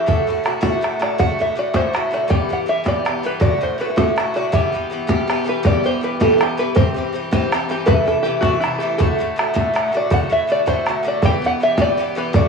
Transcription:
0.06 A2 D3 A3 F#4 A4, bodhran
0.27 A2 D3 A3 F#4, bodhran
0.44 A2 D3 A3 F#4, bodhran
0.61 A2 D3 A3 F#4, bodhran
0.81 A2 D3 A3 F#4, bodhran
0.99 A2 D3 A3 F#4 D5, bodhran
1.18 A2 D3 A3 F#4 F#5, bodhran
1.39 A2 D3 A3 F#4 E5, bodhran
1.55 A2 D3 A3 F#4 D5
1.73 A2 D3 A3 F#4 C5, bodhran
1.93 A2 D3 A3 F#4, bodhran
2.11 A2 D3 A3 F#4 D5
2.28 G2 E3 B3 G4 G5, bodhran
2.49 G2 E3 B3 G4 F#5, bodhran
2.66 G2 E3 B3 G4 E5
2.84 G2 E3 B3 G4, bodhran
2.88 D5
3.05 G2 E3 B3 G4, bodhran
3.23 G2 E3 B3 G4 B4
3.40 A2 D3 A3 F#4 D5, bodhran
3.61 A2 D3 A3 F#4 C5, bodhran
3.78 A2 D3 A3 F#4 B4
3.90 B4
3.96 A2 D3 A3 F#4 A4, bodhran
4.16 A2 D3 A3 F#4, bodhran
4.34 A2 D3 A3 F#4 D5
4.52 G2 E3 B3 G4 E5, bodhran
4.72 G2 E3 B3 G4, bodhran
4.90 G2 E3 B3 G4
5.07 G2 E3 B3 G4, bodhran
5.28 G2 E3 B3 G4, bodhran
5.44 G2 E3 B3 G4
5.49 B4
5.63 G2 E3 B3 G4 D5, bodhran
5.84 G2 E3 B3 G4 C5
6.01 G2 E3 B3 G4 B4
6.20 G2 E3 B3 G4 A4, bodhran
6.38 G2 E3 B3 G4, bodhran
6.43 G4
6.57 G2 E3 B3 G4 B4
6.75 G2 E3 C4 G4 C5, bodhran
6.94 G2 E3 C4 G4, bodhran
7.13 G2 E3 C4 G4
7.31 G2 E3 C4 G4, bodhran
7.52 G2 E3 C4 G4, bodhran
7.69 G2 E3 C4 G4
7.86 C3 E3 A3 E4 B4, bodhran
8.06 C3 E3 A3 E4 A4, bodhran
8.23 C3 E3 A3 G4
8.27 E4
8.41 C3 E3 A3 E4 F#4, bodhran
8.60 C3 E3 A3 E4, bodhran
8.64 E4
8.78 C3 E3 A3 G4
8.83 E4
8.98 A2 D3 A3 F#4 A4, bodhran
9.18 A2 D3 A3 F#4, bodhran
9.36 A2 D3 A3 F#4, bodhran
9.54 A2 D3 A3 F#4, bodhran
9.74 A2 D3 A3 F#4, bodhran
9.92 A2 D3 A3 F#4
9.97 D5
10.10 A2 D3 A3 F#4 F#5, bodhran
10.30 A2 D3 A3 F#4 E5, bodhran
10.47 A2 D3 A3 F#4
10.52 D5
10.66 A2 D3 A3 F#4 C5, bodhran
10.86 A2 D3 A3 F#4, bodhran
11.03 A2 D3 A3 F#4
11.08 D5
11.22 G2 E3 B3 G4 G5, bodhran
11.42 G2 E3 B3 G4, bodhran
11.46 F#5
11.60 G2 E3 B3 G4 E5
11.77 G2 E3 B3 G4, bodhran
11.82 D5
11.97 G2 E3 B3 G4
12.15 G2 E3 B3 G4 B4
12.33 A2 D3 A3 F#4 D5, bodhran

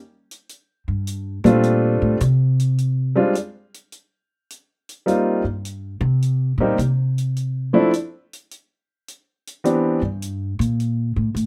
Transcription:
0.31 closed hi-hat
0.49 closed hi-hat
0.88 G2
1.07 closed hi-hat
1.44 A#2 G3 A3 C4 D4 F4, closed hi-hat
1.63 closed hi-hat
2.02 A2
2.20 C3, closed hi-hat
2.60 closed hi-hat
2.78 closed hi-hat
3.16 G3 G#3 C4 D4 F4
3.35 closed hi-hat
3.74 closed hi-hat
3.92 closed hi-hat
4.50 closed hi-hat
4.89 closed hi-hat
5.06 G3 A#3 C4 D#4 F4, closed hi-hat
5.44 G2
5.65 closed hi-hat
6.01 C3
6.22 closed hi-hat
6.58 A#2 G3 A#3 C4 D#4 G4
6.78 C3, closed hi-hat
7.18 closed hi-hat
7.36 closed hi-hat
7.73 F3 A3 C4 D4 E4
7.93 closed hi-hat
8.33 closed hi-hat
8.51 closed hi-hat
9.08 closed hi-hat
9.47 closed hi-hat
9.64 E3 B3 C4 D4 G4, closed hi-hat
10.02 G2
10.22 closed hi-hat
10.59 A#2, closed hi-hat
10.80 closed hi-hat
11.16 A2
11.35 A2, closed hi-hat

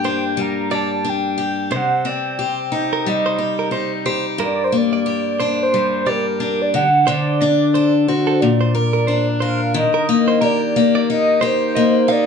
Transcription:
Already playing: G2 A#3 G4 G5
0.04 D4 C5
0.37 G3
0.41 A#5
0.71 G4 D5
0.75 A5
1.04 D4
1.09 G5
1.38 G4
1.71 C3 C5
1.76 F#5
2.05 C4 D5 G5
2.39 G4 C5
2.72 D#4
2.93 A#4
3.06 G3 D#5
3.26 C5
3.39 G4
3.59 A#4
3.71 D#4 C5
4.06 G4 C5
4.38 G2 A#4
4.43 D5
4.64 C5
4.72 A#3
4.77 D5
4.93 D5
5.06 G4
5.40 D4 C5
5.63 C5
5.74 G3
6.06 G4 A#4 D5
6.40 D4
6.62 D5
6.74 D3 F#5
7.07 D3 C5 D5
7.41 D4 D5
7.74 A4 C5
8.08 F#4 C5
8.27 A4
8.41 A#2 D5
8.61 C5
8.75 A#4
8.93 A#4
9.07 D4 C5
9.40 A#4 C5 F5
9.74 D#3 D#5
9.94 A#4
10.09 A#3
10.28 C5
10.41 G4 A#4 D5
10.76 A#3
10.95 D5
11.10 D#4 D#5
11.41 G4 C5
11.75 A#3 D#5
12.08 D#4 D5 F5

